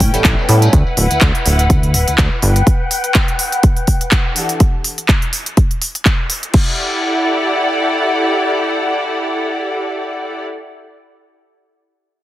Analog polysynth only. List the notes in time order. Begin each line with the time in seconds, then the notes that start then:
0.13 G3 B3 C#4 E4 A4
0.48 G3 B3 C#4 E4 A4